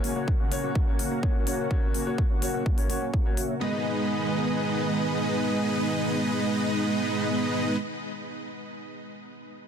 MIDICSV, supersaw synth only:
0, 0, Header, 1, 2, 480
1, 0, Start_track
1, 0, Key_signature, 5, "minor"
1, 0, Tempo, 476190
1, 1720, Time_signature, 4, 2, 24, 8
1, 9755, End_track
2, 0, Start_track
2, 0, Title_t, "Supersaw synth"
2, 0, Program_c, 0, 81
2, 43, Note_on_c, 0, 80, 81
2, 44, Note_on_c, 0, 58, 76
2, 44, Note_on_c, 0, 61, 70
2, 44, Note_on_c, 0, 66, 72
2, 44, Note_on_c, 0, 73, 74
2, 133, Note_off_c, 0, 58, 0
2, 133, Note_off_c, 0, 61, 0
2, 133, Note_off_c, 0, 66, 0
2, 133, Note_off_c, 0, 73, 0
2, 133, Note_off_c, 0, 80, 0
2, 162, Note_on_c, 0, 58, 88
2, 162, Note_on_c, 0, 61, 80
2, 162, Note_on_c, 0, 66, 80
2, 162, Note_on_c, 0, 73, 75
2, 162, Note_on_c, 0, 78, 98
2, 331, Note_off_c, 0, 58, 0
2, 331, Note_off_c, 0, 61, 0
2, 331, Note_off_c, 0, 66, 0
2, 331, Note_off_c, 0, 73, 0
2, 331, Note_off_c, 0, 78, 0
2, 402, Note_on_c, 0, 58, 70
2, 402, Note_on_c, 0, 61, 62
2, 402, Note_on_c, 0, 66, 63
2, 402, Note_on_c, 0, 73, 65
2, 402, Note_on_c, 0, 78, 71
2, 612, Note_off_c, 0, 58, 0
2, 612, Note_off_c, 0, 61, 0
2, 612, Note_off_c, 0, 66, 0
2, 612, Note_off_c, 0, 73, 0
2, 612, Note_off_c, 0, 78, 0
2, 642, Note_on_c, 0, 58, 95
2, 642, Note_on_c, 0, 61, 83
2, 642, Note_on_c, 0, 66, 85
2, 642, Note_on_c, 0, 73, 86
2, 642, Note_on_c, 0, 78, 98
2, 732, Note_off_c, 0, 58, 0
2, 732, Note_off_c, 0, 61, 0
2, 732, Note_off_c, 0, 66, 0
2, 732, Note_off_c, 0, 73, 0
2, 732, Note_off_c, 0, 78, 0
2, 762, Note_on_c, 0, 66, 85
2, 762, Note_on_c, 0, 78, 101
2, 972, Note_off_c, 0, 66, 0
2, 972, Note_off_c, 0, 78, 0
2, 1001, Note_on_c, 0, 66, 63
2, 1002, Note_on_c, 0, 58, 69
2, 1002, Note_on_c, 0, 61, 62
2, 1002, Note_on_c, 0, 73, 64
2, 1002, Note_on_c, 0, 78, 76
2, 1103, Note_off_c, 0, 58, 0
2, 1103, Note_off_c, 0, 61, 0
2, 1103, Note_off_c, 0, 66, 0
2, 1103, Note_off_c, 0, 73, 0
2, 1103, Note_off_c, 0, 78, 0
2, 1122, Note_on_c, 0, 58, 84
2, 1122, Note_on_c, 0, 61, 85
2, 1122, Note_on_c, 0, 66, 79
2, 1122, Note_on_c, 0, 73, 78
2, 1122, Note_on_c, 0, 82, 101
2, 1212, Note_off_c, 0, 58, 0
2, 1212, Note_off_c, 0, 61, 0
2, 1212, Note_off_c, 0, 66, 0
2, 1212, Note_off_c, 0, 73, 0
2, 1212, Note_off_c, 0, 82, 0
2, 1482, Note_on_c, 0, 58, 96
2, 1482, Note_on_c, 0, 61, 89
2, 1482, Note_on_c, 0, 66, 90
2, 1482, Note_on_c, 0, 73, 91
2, 1482, Note_on_c, 0, 78, 100
2, 1692, Note_off_c, 0, 58, 0
2, 1692, Note_off_c, 0, 61, 0
2, 1692, Note_off_c, 0, 66, 0
2, 1692, Note_off_c, 0, 73, 0
2, 1692, Note_off_c, 0, 78, 0
2, 1722, Note_on_c, 0, 61, 79
2, 1722, Note_on_c, 0, 66, 77
2, 1723, Note_on_c, 0, 58, 85
2, 1723, Note_on_c, 0, 73, 75
2, 1891, Note_off_c, 0, 61, 0
2, 1891, Note_off_c, 0, 66, 0
2, 1892, Note_off_c, 0, 58, 0
2, 1892, Note_off_c, 0, 73, 0
2, 1963, Note_on_c, 0, 58, 78
2, 1963, Note_on_c, 0, 61, 68
2, 1963, Note_on_c, 0, 66, 66
2, 1963, Note_on_c, 0, 73, 70
2, 1963, Note_on_c, 0, 80, 81
2, 2053, Note_off_c, 0, 58, 0
2, 2053, Note_off_c, 0, 61, 0
2, 2053, Note_off_c, 0, 66, 0
2, 2053, Note_off_c, 0, 73, 0
2, 2053, Note_off_c, 0, 80, 0
2, 2082, Note_on_c, 0, 58, 86
2, 2082, Note_on_c, 0, 61, 76
2, 2082, Note_on_c, 0, 66, 79
2, 2082, Note_on_c, 0, 73, 77
2, 2082, Note_on_c, 0, 78, 93
2, 2251, Note_off_c, 0, 58, 0
2, 2251, Note_off_c, 0, 61, 0
2, 2251, Note_off_c, 0, 66, 0
2, 2251, Note_off_c, 0, 73, 0
2, 2251, Note_off_c, 0, 78, 0
2, 2321, Note_on_c, 0, 73, 62
2, 2322, Note_on_c, 0, 58, 70
2, 2322, Note_on_c, 0, 61, 61
2, 2322, Note_on_c, 0, 66, 61
2, 2322, Note_on_c, 0, 78, 78
2, 2532, Note_off_c, 0, 58, 0
2, 2532, Note_off_c, 0, 61, 0
2, 2532, Note_off_c, 0, 66, 0
2, 2532, Note_off_c, 0, 73, 0
2, 2532, Note_off_c, 0, 78, 0
2, 2561, Note_on_c, 0, 73, 82
2, 2561, Note_on_c, 0, 78, 98
2, 2562, Note_on_c, 0, 58, 92
2, 2562, Note_on_c, 0, 61, 84
2, 2562, Note_on_c, 0, 66, 88
2, 2652, Note_off_c, 0, 58, 0
2, 2652, Note_off_c, 0, 61, 0
2, 2652, Note_off_c, 0, 66, 0
2, 2652, Note_off_c, 0, 73, 0
2, 2652, Note_off_c, 0, 78, 0
2, 2681, Note_on_c, 0, 58, 88
2, 2892, Note_off_c, 0, 58, 0
2, 2920, Note_on_c, 0, 66, 76
2, 2920, Note_on_c, 0, 73, 70
2, 2921, Note_on_c, 0, 58, 83
2, 2921, Note_on_c, 0, 61, 73
2, 2921, Note_on_c, 0, 78, 93
2, 3011, Note_off_c, 0, 66, 0
2, 3011, Note_off_c, 0, 73, 0
2, 3012, Note_off_c, 0, 58, 0
2, 3012, Note_off_c, 0, 61, 0
2, 3012, Note_off_c, 0, 78, 0
2, 3041, Note_on_c, 0, 58, 71
2, 3041, Note_on_c, 0, 61, 66
2, 3041, Note_on_c, 0, 66, 67
2, 3041, Note_on_c, 0, 73, 69
2, 3041, Note_on_c, 0, 80, 81
2, 3132, Note_off_c, 0, 58, 0
2, 3132, Note_off_c, 0, 61, 0
2, 3132, Note_off_c, 0, 66, 0
2, 3132, Note_off_c, 0, 73, 0
2, 3132, Note_off_c, 0, 80, 0
2, 3401, Note_on_c, 0, 58, 74
2, 3401, Note_on_c, 0, 61, 70
2, 3401, Note_on_c, 0, 66, 70
2, 3401, Note_on_c, 0, 73, 70
2, 3401, Note_on_c, 0, 76, 84
2, 3571, Note_off_c, 0, 58, 0
2, 3571, Note_off_c, 0, 61, 0
2, 3571, Note_off_c, 0, 66, 0
2, 3571, Note_off_c, 0, 73, 0
2, 3571, Note_off_c, 0, 76, 0
2, 3640, Note_on_c, 0, 56, 83
2, 3640, Note_on_c, 0, 59, 77
2, 3640, Note_on_c, 0, 63, 75
2, 3640, Note_on_c, 0, 71, 75
2, 3640, Note_on_c, 0, 75, 92
2, 7828, Note_off_c, 0, 56, 0
2, 7828, Note_off_c, 0, 59, 0
2, 7828, Note_off_c, 0, 63, 0
2, 7828, Note_off_c, 0, 75, 0
2, 7829, Note_off_c, 0, 71, 0
2, 9755, End_track
0, 0, End_of_file